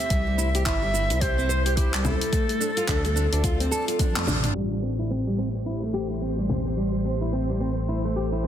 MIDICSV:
0, 0, Header, 1, 7, 480
1, 0, Start_track
1, 0, Key_signature, 0, "minor"
1, 0, Tempo, 555556
1, 91, Time_signature, 4, 2, 24, 8
1, 7320, End_track
2, 0, Start_track
2, 0, Title_t, "Native American-style wooden flute"
2, 0, Program_c, 0, 77
2, 0, Note_on_c, 0, 76, 103
2, 564, Note_off_c, 0, 76, 0
2, 564, Note_on_c, 0, 76, 113
2, 1048, Note_on_c, 0, 72, 106
2, 1061, Note_off_c, 0, 76, 0
2, 1524, Note_on_c, 0, 67, 96
2, 1537, Note_off_c, 0, 72, 0
2, 1764, Note_on_c, 0, 69, 104
2, 1777, Note_off_c, 0, 67, 0
2, 3447, Note_off_c, 0, 69, 0
2, 7320, End_track
3, 0, Start_track
3, 0, Title_t, "Synth texture"
3, 0, Program_c, 1, 99
3, 3932, Note_on_c, 1, 72, 76
3, 7320, Note_off_c, 1, 72, 0
3, 7320, End_track
4, 0, Start_track
4, 0, Title_t, "Ambient pad"
4, 0, Program_c, 2, 92
4, 0, Note_on_c, 2, 72, 87
4, 89, Note_on_c, 2, 64, 68
4, 90, Note_on_c, 2, 55, 75
4, 1976, Note_off_c, 2, 72, 0
4, 1991, Note_off_c, 2, 55, 0
4, 1991, Note_off_c, 2, 64, 0
4, 2012, Note_on_c, 2, 65, 73
4, 2013, Note_on_c, 2, 60, 76
4, 2013, Note_on_c, 2, 74, 88
4, 3912, Note_off_c, 2, 65, 0
4, 3913, Note_off_c, 2, 60, 0
4, 3913, Note_off_c, 2, 74, 0
4, 3932, Note_on_c, 2, 72, 84
4, 3933, Note_on_c, 2, 57, 69
4, 3933, Note_on_c, 2, 67, 65
4, 5833, Note_off_c, 2, 67, 0
4, 5850, Note_on_c, 2, 69, 61
4, 7320, Note_off_c, 2, 57, 0
4, 7320, Note_off_c, 2, 69, 0
4, 7320, Note_off_c, 2, 72, 0
4, 7320, End_track
5, 0, Start_track
5, 0, Title_t, "Nylon-string guitar"
5, 0, Program_c, 3, 24
5, 92, Note_on_c, 3, 55, 77
5, 221, Note_off_c, 3, 55, 0
5, 233, Note_on_c, 3, 55, 64
5, 320, Note_off_c, 3, 55, 0
5, 328, Note_on_c, 3, 64, 95
5, 411, Note_off_c, 3, 64, 0
5, 473, Note_on_c, 3, 67, 66
5, 564, Note_off_c, 3, 67, 0
5, 567, Note_on_c, 3, 64, 99
5, 705, Note_off_c, 3, 64, 0
5, 712, Note_on_c, 3, 55, 72
5, 800, Note_off_c, 3, 55, 0
5, 810, Note_on_c, 3, 64, 92
5, 892, Note_off_c, 3, 64, 0
5, 952, Note_on_c, 3, 64, 72
5, 1040, Note_off_c, 3, 64, 0
5, 1050, Note_on_c, 3, 67, 80
5, 1179, Note_off_c, 3, 67, 0
5, 1192, Note_on_c, 3, 60, 74
5, 1280, Note_off_c, 3, 60, 0
5, 1288, Note_on_c, 3, 72, 104
5, 1419, Note_off_c, 3, 72, 0
5, 1431, Note_on_c, 3, 67, 73
5, 1524, Note_off_c, 3, 67, 0
5, 1529, Note_on_c, 3, 64, 96
5, 1666, Note_off_c, 3, 64, 0
5, 1672, Note_on_c, 3, 55, 79
5, 1760, Note_off_c, 3, 55, 0
5, 1770, Note_on_c, 3, 64, 91
5, 1852, Note_off_c, 3, 64, 0
5, 1913, Note_on_c, 3, 64, 73
5, 2001, Note_off_c, 3, 64, 0
5, 2009, Note_on_c, 3, 57, 86
5, 2139, Note_off_c, 3, 57, 0
5, 2153, Note_on_c, 3, 57, 68
5, 2241, Note_off_c, 3, 57, 0
5, 2250, Note_on_c, 3, 62, 96
5, 2332, Note_off_c, 3, 62, 0
5, 2393, Note_on_c, 3, 65, 72
5, 2485, Note_off_c, 3, 65, 0
5, 2488, Note_on_c, 3, 62, 103
5, 2626, Note_off_c, 3, 62, 0
5, 2633, Note_on_c, 3, 57, 74
5, 2721, Note_off_c, 3, 57, 0
5, 2727, Note_on_c, 3, 62, 100
5, 2811, Note_off_c, 3, 62, 0
5, 2873, Note_on_c, 3, 62, 72
5, 2960, Note_off_c, 3, 62, 0
5, 2970, Note_on_c, 3, 65, 80
5, 3099, Note_off_c, 3, 65, 0
5, 3112, Note_on_c, 3, 60, 74
5, 3200, Note_off_c, 3, 60, 0
5, 3209, Note_on_c, 3, 69, 93
5, 3339, Note_off_c, 3, 69, 0
5, 3351, Note_on_c, 3, 65, 68
5, 3445, Note_off_c, 3, 65, 0
5, 3449, Note_on_c, 3, 62, 100
5, 3586, Note_off_c, 3, 62, 0
5, 3594, Note_on_c, 3, 57, 76
5, 3681, Note_off_c, 3, 57, 0
5, 3688, Note_on_c, 3, 62, 99
5, 3771, Note_off_c, 3, 62, 0
5, 3833, Note_on_c, 3, 62, 76
5, 3921, Note_off_c, 3, 62, 0
5, 3929, Note_on_c, 3, 55, 72
5, 4059, Note_off_c, 3, 55, 0
5, 4074, Note_on_c, 3, 55, 57
5, 4161, Note_off_c, 3, 55, 0
5, 4169, Note_on_c, 3, 60, 80
5, 4252, Note_off_c, 3, 60, 0
5, 4311, Note_on_c, 3, 64, 65
5, 4405, Note_off_c, 3, 64, 0
5, 4410, Note_on_c, 3, 60, 86
5, 4546, Note_off_c, 3, 60, 0
5, 4552, Note_on_c, 3, 55, 61
5, 4640, Note_off_c, 3, 55, 0
5, 4650, Note_on_c, 3, 60, 84
5, 4732, Note_off_c, 3, 60, 0
5, 4792, Note_on_c, 3, 60, 66
5, 4880, Note_off_c, 3, 60, 0
5, 4890, Note_on_c, 3, 64, 70
5, 5020, Note_off_c, 3, 64, 0
5, 5033, Note_on_c, 3, 57, 64
5, 5121, Note_off_c, 3, 57, 0
5, 5128, Note_on_c, 3, 67, 86
5, 5258, Note_off_c, 3, 67, 0
5, 5272, Note_on_c, 3, 64, 60
5, 5365, Note_off_c, 3, 64, 0
5, 5369, Note_on_c, 3, 60, 81
5, 5506, Note_off_c, 3, 60, 0
5, 5513, Note_on_c, 3, 55, 69
5, 5601, Note_off_c, 3, 55, 0
5, 5610, Note_on_c, 3, 60, 84
5, 5692, Note_off_c, 3, 60, 0
5, 5753, Note_on_c, 3, 60, 65
5, 5841, Note_off_c, 3, 60, 0
5, 5849, Note_on_c, 3, 55, 68
5, 5979, Note_off_c, 3, 55, 0
5, 5990, Note_on_c, 3, 55, 57
5, 6079, Note_off_c, 3, 55, 0
5, 6090, Note_on_c, 3, 60, 83
5, 6172, Note_off_c, 3, 60, 0
5, 6232, Note_on_c, 3, 64, 61
5, 6325, Note_off_c, 3, 64, 0
5, 6330, Note_on_c, 3, 60, 85
5, 6467, Note_off_c, 3, 60, 0
5, 6474, Note_on_c, 3, 55, 64
5, 6561, Note_off_c, 3, 55, 0
5, 6569, Note_on_c, 3, 60, 87
5, 6652, Note_off_c, 3, 60, 0
5, 6712, Note_on_c, 3, 60, 62
5, 6800, Note_off_c, 3, 60, 0
5, 6813, Note_on_c, 3, 64, 73
5, 6941, Note_off_c, 3, 64, 0
5, 6954, Note_on_c, 3, 57, 69
5, 7041, Note_off_c, 3, 57, 0
5, 7051, Note_on_c, 3, 67, 83
5, 7180, Note_off_c, 3, 67, 0
5, 7191, Note_on_c, 3, 64, 64
5, 7284, Note_off_c, 3, 64, 0
5, 7289, Note_on_c, 3, 60, 90
5, 7320, Note_off_c, 3, 60, 0
5, 7320, End_track
6, 0, Start_track
6, 0, Title_t, "Analog synth bass"
6, 0, Program_c, 4, 38
6, 90, Note_on_c, 4, 36, 97
6, 571, Note_on_c, 4, 31, 83
6, 584, Note_off_c, 4, 36, 0
6, 956, Note_on_c, 4, 36, 98
6, 969, Note_off_c, 4, 31, 0
6, 1870, Note_off_c, 4, 36, 0
6, 2491, Note_on_c, 4, 38, 86
6, 2829, Note_off_c, 4, 38, 0
6, 2877, Note_on_c, 4, 38, 98
6, 3182, Note_off_c, 4, 38, 0
6, 3597, Note_on_c, 4, 41, 84
6, 3674, Note_off_c, 4, 41, 0
6, 3692, Note_on_c, 4, 33, 87
6, 3894, Note_off_c, 4, 33, 0
6, 3931, Note_on_c, 4, 33, 76
6, 7320, Note_off_c, 4, 33, 0
6, 7320, End_track
7, 0, Start_track
7, 0, Title_t, "Drums"
7, 1, Note_on_c, 9, 82, 30
7, 87, Note_off_c, 9, 82, 0
7, 89, Note_on_c, 9, 46, 60
7, 90, Note_on_c, 9, 36, 99
7, 97, Note_on_c, 9, 82, 44
7, 175, Note_off_c, 9, 46, 0
7, 176, Note_off_c, 9, 36, 0
7, 183, Note_off_c, 9, 82, 0
7, 336, Note_on_c, 9, 82, 72
7, 423, Note_off_c, 9, 82, 0
7, 473, Note_on_c, 9, 46, 42
7, 481, Note_on_c, 9, 82, 31
7, 560, Note_off_c, 9, 46, 0
7, 567, Note_off_c, 9, 82, 0
7, 569, Note_on_c, 9, 39, 74
7, 569, Note_on_c, 9, 46, 54
7, 570, Note_on_c, 9, 36, 95
7, 576, Note_on_c, 9, 82, 41
7, 655, Note_off_c, 9, 39, 0
7, 655, Note_off_c, 9, 46, 0
7, 656, Note_off_c, 9, 36, 0
7, 663, Note_off_c, 9, 82, 0
7, 818, Note_on_c, 9, 82, 72
7, 904, Note_off_c, 9, 82, 0
7, 953, Note_on_c, 9, 46, 45
7, 960, Note_on_c, 9, 82, 31
7, 1039, Note_off_c, 9, 46, 0
7, 1047, Note_off_c, 9, 82, 0
7, 1049, Note_on_c, 9, 46, 55
7, 1050, Note_on_c, 9, 36, 98
7, 1057, Note_on_c, 9, 82, 43
7, 1136, Note_off_c, 9, 36, 0
7, 1136, Note_off_c, 9, 46, 0
7, 1144, Note_off_c, 9, 82, 0
7, 1201, Note_on_c, 9, 82, 30
7, 1288, Note_off_c, 9, 82, 0
7, 1298, Note_on_c, 9, 82, 69
7, 1384, Note_off_c, 9, 82, 0
7, 1434, Note_on_c, 9, 46, 44
7, 1442, Note_on_c, 9, 82, 32
7, 1520, Note_off_c, 9, 46, 0
7, 1528, Note_off_c, 9, 82, 0
7, 1530, Note_on_c, 9, 36, 89
7, 1530, Note_on_c, 9, 46, 58
7, 1538, Note_on_c, 9, 82, 42
7, 1617, Note_off_c, 9, 36, 0
7, 1617, Note_off_c, 9, 46, 0
7, 1624, Note_off_c, 9, 82, 0
7, 1673, Note_on_c, 9, 39, 78
7, 1673, Note_on_c, 9, 46, 34
7, 1760, Note_off_c, 9, 39, 0
7, 1760, Note_off_c, 9, 46, 0
7, 1769, Note_on_c, 9, 64, 85
7, 1777, Note_on_c, 9, 82, 72
7, 1855, Note_off_c, 9, 64, 0
7, 1863, Note_off_c, 9, 82, 0
7, 1913, Note_on_c, 9, 46, 43
7, 1921, Note_on_c, 9, 82, 28
7, 2000, Note_off_c, 9, 46, 0
7, 2008, Note_off_c, 9, 82, 0
7, 2010, Note_on_c, 9, 36, 102
7, 2010, Note_on_c, 9, 46, 56
7, 2018, Note_on_c, 9, 82, 42
7, 2096, Note_off_c, 9, 46, 0
7, 2097, Note_off_c, 9, 36, 0
7, 2104, Note_off_c, 9, 82, 0
7, 2154, Note_on_c, 9, 46, 31
7, 2162, Note_on_c, 9, 82, 27
7, 2241, Note_off_c, 9, 46, 0
7, 2248, Note_off_c, 9, 82, 0
7, 2257, Note_on_c, 9, 82, 74
7, 2344, Note_off_c, 9, 82, 0
7, 2393, Note_on_c, 9, 46, 44
7, 2401, Note_on_c, 9, 82, 31
7, 2480, Note_off_c, 9, 46, 0
7, 2487, Note_off_c, 9, 82, 0
7, 2490, Note_on_c, 9, 39, 74
7, 2490, Note_on_c, 9, 46, 56
7, 2491, Note_on_c, 9, 36, 87
7, 2498, Note_on_c, 9, 82, 44
7, 2576, Note_off_c, 9, 39, 0
7, 2576, Note_off_c, 9, 46, 0
7, 2577, Note_off_c, 9, 36, 0
7, 2584, Note_off_c, 9, 82, 0
7, 2633, Note_on_c, 9, 46, 32
7, 2640, Note_on_c, 9, 82, 28
7, 2719, Note_off_c, 9, 46, 0
7, 2727, Note_off_c, 9, 82, 0
7, 2738, Note_on_c, 9, 82, 69
7, 2824, Note_off_c, 9, 82, 0
7, 2874, Note_on_c, 9, 46, 47
7, 2881, Note_on_c, 9, 82, 34
7, 2960, Note_off_c, 9, 46, 0
7, 2968, Note_off_c, 9, 82, 0
7, 2970, Note_on_c, 9, 46, 61
7, 2971, Note_on_c, 9, 36, 100
7, 2978, Note_on_c, 9, 82, 44
7, 3057, Note_off_c, 9, 36, 0
7, 3057, Note_off_c, 9, 46, 0
7, 3064, Note_off_c, 9, 82, 0
7, 3114, Note_on_c, 9, 46, 33
7, 3122, Note_on_c, 9, 82, 30
7, 3201, Note_off_c, 9, 46, 0
7, 3208, Note_off_c, 9, 82, 0
7, 3217, Note_on_c, 9, 82, 72
7, 3303, Note_off_c, 9, 82, 0
7, 3354, Note_on_c, 9, 46, 45
7, 3362, Note_on_c, 9, 82, 30
7, 3441, Note_off_c, 9, 46, 0
7, 3448, Note_off_c, 9, 82, 0
7, 3451, Note_on_c, 9, 36, 95
7, 3451, Note_on_c, 9, 46, 59
7, 3451, Note_on_c, 9, 48, 60
7, 3458, Note_on_c, 9, 82, 45
7, 3537, Note_off_c, 9, 36, 0
7, 3537, Note_off_c, 9, 46, 0
7, 3537, Note_off_c, 9, 48, 0
7, 3545, Note_off_c, 9, 82, 0
7, 3595, Note_on_c, 9, 39, 79
7, 3595, Note_on_c, 9, 46, 32
7, 3595, Note_on_c, 9, 48, 63
7, 3602, Note_on_c, 9, 82, 28
7, 3681, Note_off_c, 9, 39, 0
7, 3681, Note_off_c, 9, 46, 0
7, 3681, Note_off_c, 9, 48, 0
7, 3689, Note_off_c, 9, 82, 0
7, 3691, Note_on_c, 9, 47, 86
7, 3691, Note_on_c, 9, 64, 78
7, 3699, Note_on_c, 9, 82, 75
7, 3777, Note_off_c, 9, 47, 0
7, 3777, Note_off_c, 9, 64, 0
7, 3785, Note_off_c, 9, 82, 0
7, 3834, Note_on_c, 9, 45, 81
7, 3834, Note_on_c, 9, 46, 46
7, 3842, Note_on_c, 9, 82, 31
7, 3920, Note_off_c, 9, 45, 0
7, 3920, Note_off_c, 9, 46, 0
7, 3928, Note_off_c, 9, 82, 0
7, 5610, Note_on_c, 9, 64, 72
7, 5696, Note_off_c, 9, 64, 0
7, 7320, End_track
0, 0, End_of_file